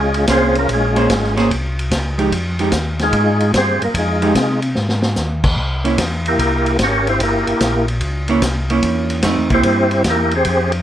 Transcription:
Already playing: tonewheel organ C#2 G#3 C#4 F4 G#4
0.14 ride
0.27 tonewheel organ C2, hollow-body jazz guitar A#3 C#4 G#4 C5, kick, snare, hi-hat pedal, ride
0.31 tonewheel organ C4 F4 G#4 C5
0.55 tonewheel organ A#3 C#4 F4 A#4, ride
0.68 tonewheel organ A#1, kick, ride
0.73 tonewheel organ G#3 C#4 F4 G#4
0.96 hollow-body jazz guitar A#3 C#4 G#4 C5, ride
1.10 tonewheel organ G#1, kick, snare, hi-hat pedal, ride
1.24 snare
1.36 hollow-body jazz guitar A#3 C#4 G#4 C5, snare, ride
1.51 tonewheel organ C2, kick, ride
1.79 ride
1.91 tonewheel organ C#2, kick, snare, hi-hat pedal, ride
2.18 hollow-body jazz guitar F3 G#3 D#4 G4, ride
2.32 tonewheel organ F2, kick, ride
2.59 hollow-body jazz guitar F3 G#3 D#4 G4, ride
2.72 tonewheel organ D#2, kick, snare, hi-hat pedal, ride
2.99 tonewheel organ G#3 D#4 G#4, snare, ride
3.03 tonewheel organ F4
3.13 tonewheel organ G#2, kick, ride
3.40 ride
3.54 tonewheel organ G2 C4 G#4 C5, kick, snare, hi-hat pedal, ride
3.58 tonewheel organ G4
3.82 tonewheel organ G2 A#3 A#4, ride
3.94 tonewheel organ F2 D#4 F4 G#4, kick, ride
3.98 tonewheel organ G#3
4.22 hollow-body jazz guitar F3 G#3 D#4 G4, ride
4.35 tonewheel organ C3, kick, snare, hi-hat pedal, ride
4.62 ride
4.75 tonewheel organ G#2, snare
4.89 snare
5.02 snare
5.16 tonewheel organ D#2, snare, hi-hat pedal
5.44 kick, crash
5.57 tonewheel organ C2, kick
5.84 hollow-body jazz guitar A#3 C#4 E4, ride
5.98 tonewheel organ E2, kick, snare, hi-hat pedal, ride
6.26 tonewheel organ A#3 E4 G4 A#4, ride
6.39 tonewheel organ C2, kick, ride
6.66 ride
6.79 tonewheel organ G#1, kick, snare, hi-hat pedal, ride
6.83 tonewheel organ C#4 G4 A#4 C#5
7.07 tonewheel organ C4 E4 G4 C5, ride
7.20 tonewheel organ G1 A#3 E4 G4 A#4, kick, ride
7.47 tonewheel organ G1, ride
7.60 tonewheel organ A#1, kick, snare, hi-hat pedal, ride
7.88 ride
8.01 tonewheel organ C#2, kick, ride
8.28 hollow-body jazz guitar A#3 C#4 E4, ride
8.42 tonewheel organ C2, kick, snare, hi-hat pedal, ride
8.70 hollow-body jazz guitar A#3 C#4 E4, ride
8.83 tonewheel organ E2, kick, ride
9.10 ride
9.22 tonewheel organ F2, hollow-body jazz guitar A3 C4 D#4, kick, snare, hi-hat pedal, ride
9.38 tonewheel organ E2
9.50 tonewheel organ C2 C5, hollow-body jazz guitar A#3 E4, kick, ride
9.54 tonewheel organ C4 E4 G4
9.63 tonewheel organ G2, kick, ride
9.91 ride
10.04 tonewheel organ E2, kick, snare, hi-hat pedal, ride
10.10 tonewheel organ A#3 E4 G4 A#4
10.31 tonewheel organ C5, ride
10.36 tonewheel organ C4 G4 G#4
10.45 tonewheel organ F2, kick, ride
10.72 ride

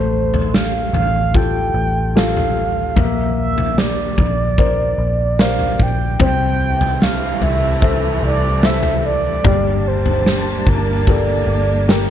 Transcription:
Already playing: fingered electric bass A1, upright piano A3, soft synth lead C5
0.34 floor tom
0.54 soft synth lead F5, snare
0.93 fingered electric bass A1, soft synth lead F5, floor tom
1.34 upright piano F4 G4 A4, soft synth lead G5, kick, floor tom
1.74 fingered electric bass A1
2.15 upright piano F4 G4 A4, soft synth lead F5, snare
2.37 floor tom
2.96 fingered electric bass A#1, upright piano A#3, soft synth lead E5, kick, floor tom
3.38 soft synth lead E5
3.58 floor tom
3.78 soft synth lead D5, snare
4.18 fingered electric bass A#1, kick, floor tom
4.58 upright piano A#4 C5 D5, kick, floor tom
4.98 fingered electric bass A#1
5.39 upright piano A#4 C5 D5, soft synth lead F5, snare
5.59 floor tom
5.79 fingered electric bass A#1, soft synth lead G5, kick
6.19 fingered electric bass C2, string section C3 E3 G3 A3, upright piano C4, soft synth lead G5, kick, floor tom
6.81 floor tom
7.02 soft synth lead F5, snare
7.41 fingered electric bass C2, soft synth lead E5, floor tom
7.82 upright piano A4 C5 E5, kick, floor tom
8.23 fingered electric bass C2, soft synth lead D5
8.63 upright piano A4 C5 E5, soft synth lead E5, snare
8.83 floor tom
9.06 soft synth lead D5
9.44 fingered electric bass G1, upright piano G3, string section A#3 D4 A5, kick, floor tom
9.88 soft synth lead C5
10.06 floor tom
10.26 snare
10.67 fingered electric bass G1, soft synth lead A#4, kick, floor tom
11.07 upright piano G4 A4 A#4, soft synth lead D5, kick, floor tom
11.47 fingered electric bass G1
11.88 upright piano G4 A#4, soft synth lead A#4, snare

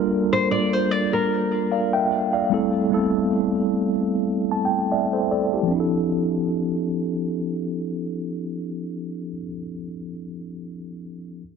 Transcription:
Already playing: tine electric piano G3 A#3 D4 F4 A4 A#4
0.33 nylon-string guitar C5
0.51 nylon-string guitar D5
0.73 nylon-string guitar C5
0.91 nylon-string guitar D5
1.13 nylon-string guitar A#4
1.72 tine electric piano D5 F5
1.93 tine electric piano E5 G5
2.33 tine electric piano D5 F5
2.50 tine electric piano G3 A3 C4 E4
2.54 tine electric piano A4
2.90 tine electric piano G3 A3 B3 E4
2.94 tine electric piano A4
2.98 tine electric piano C4
4.51 tine electric piano A5
4.65 tine electric piano G5
4.92 tine electric piano D5 E5
5.13 tine electric piano A4 C5
5.31 tine electric piano A4 D5
5.53 tine electric piano E4 G4
5.63 tine electric piano F3
5.67 tine electric piano C4
5.71 tine electric piano D4
5.76 tine electric piano E4
5.80 tine electric piano A4

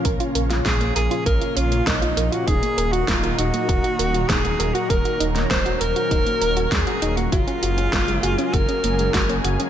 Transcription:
Already playing: analog synth pad A#2 C#3 F3 C#4 F4
0.05 detuned saw bass A#1, synth arpeggio sound A#4, kick, closed hi-hat
0.20 synth arpeggio sound F4, closed hi-hat
0.35 detuned saw bass A#1, synth arpeggio sound A#4, closed hi-hat
0.50 synth arpeggio sound F4, snare, closed hi-hat
0.66 detuned saw bass A#1, synth arpeggio sound C#4, tenor saxophone G#4, kick, snare, closed hi-hat
0.81 synth arpeggio sound A#3, closed hi-hat
0.96 detuned saw bass A#1, tenor saxophone G#4, synth arpeggio sound A#4, closed hi-hat
1.11 synth arpeggio sound F4, closed hi-hat
1.26 detuned saw bass A#1, synth arpeggio sound A#4, tenor saxophone A#4, kick, closed hi-hat
1.41 synth arpeggio sound F4, closed hi-hat
1.56 detuned saw bass A#1, synth arpeggio sound C#4, tenor saxophone F4, closed hi-hat
1.72 synth arpeggio sound A#3, closed hi-hat
1.87 detuned saw bass A#1, tenor saxophone D#4, synth arpeggio sound A#4, kick, snare, closed hi-hat
2.02 synth arpeggio sound F4, closed hi-hat
2.17 detuned saw bass A#1, synth arpeggio sound A#4, closed hi-hat
2.32 synth arpeggio sound F4, tenor saxophone F#4, closed hi-hat
2.47 detuned saw bass D#1, analog synth pad D#3 F#3 D#4 A#4, synth arpeggio sound D#4, tenor saxophone G#4, kick, closed hi-hat
2.62 synth arpeggio sound A#3, closed hi-hat
2.78 detuned saw bass D#1, synth arpeggio sound A#4, closed hi-hat
2.93 synth arpeggio sound F#4, tenor saxophone F#4, closed hi-hat
3.08 detuned saw bass D#1, tenor saxophone F4, synth arpeggio sound A#4, kick, snare, closed hi-hat
3.23 synth arpeggio sound F#4, closed hi-hat
3.38 detuned saw bass D#1, synth arpeggio sound D#4, tenor saxophone F#4, closed hi-hat
3.54 synth arpeggio sound A#3, closed hi-hat
3.69 detuned saw bass D#1, synth arpeggio sound A#4, kick, closed hi-hat
3.84 synth arpeggio sound F#4, closed hi-hat
3.99 detuned saw bass D#1, synth arpeggio sound A#4, closed hi-hat
4.14 synth arpeggio sound F#4, closed hi-hat
4.29 detuned saw bass D#1, synth arpeggio sound D#4, tenor saxophone G#4, kick, snare, closed hi-hat
4.45 synth arpeggio sound A#3, closed hi-hat
4.60 detuned saw bass D#1, synth arpeggio sound A#4, closed hi-hat
4.75 synth arpeggio sound F#4, tenor saxophone F#4, closed hi-hat
4.90 detuned saw bass D#1, analog synth pad C#4, synth arpeggio sound A#4, tenor saxophone A#4, kick, closed hi-hat
5.05 synth arpeggio sound F#4, closed hi-hat
5.20 detuned saw bass D#1, synth arpeggio sound D#4, closed hi-hat
5.35 synth arpeggio sound A#3, snare, closed hi-hat
5.50 detuned saw bass D#1, synth arpeggio sound A#4, tenor saxophone C5, kick, snare, closed hi-hat
5.66 synth arpeggio sound F#4, closed hi-hat
5.81 detuned saw bass D#1, synth arpeggio sound A#4, tenor saxophone A#4, closed hi-hat
5.96 synth arpeggio sound F#4, closed hi-hat
6.11 detuned saw bass D#1, synth arpeggio sound D#4, kick, closed hi-hat
6.26 synth arpeggio sound A#3, closed hi-hat
6.41 detuned saw bass D#1, synth arpeggio sound A#4, closed hi-hat
6.57 synth arpeggio sound F#4, closed hi-hat
6.72 detuned saw bass D#2, tenor saxophone G#4, synth arpeggio sound A#4, kick, snare, closed hi-hat
6.87 synth arpeggio sound F#4, closed hi-hat
7.02 detuned saw bass D#1, synth arpeggio sound D#4, closed hi-hat
7.17 synth arpeggio sound A#3, tenor saxophone F#4, closed hi-hat
7.32 detuned saw bass F#1, analog synth pad C#3 G#3 A#3 G#4, tenor saxophone F4, synth arpeggio sound F#4, kick, closed hi-hat
7.47 synth arpeggio sound C#4, closed hi-hat
7.63 detuned saw bass F#1, synth arpeggio sound F#4, closed hi-hat
7.78 synth arpeggio sound C#4, closed hi-hat
7.93 detuned saw bass F#1, synth arpeggio sound A#3, kick, snare, closed hi-hat
8.08 synth arpeggio sound G#3, closed hi-hat
8.23 detuned saw bass F#1, synth arpeggio sound F#4, closed hi-hat
8.38 synth arpeggio sound C#4, closed hi-hat
8.53 detuned saw bass F#1, synth arpeggio sound F#4, tenor saxophone A#4, kick, closed hi-hat
8.69 synth arpeggio sound C#4, closed hi-hat
8.84 detuned saw bass F#1, synth arpeggio sound A#3, closed hi-hat
8.99 synth arpeggio sound G#3, closed hi-hat
9.14 detuned saw bass F#1, synth arpeggio sound F#4, kick, snare, closed hi-hat
9.29 synth arpeggio sound C#4, closed hi-hat
9.44 detuned saw bass F#1, synth arpeggio sound F#4, closed hi-hat
9.60 synth arpeggio sound C#4, closed hi-hat

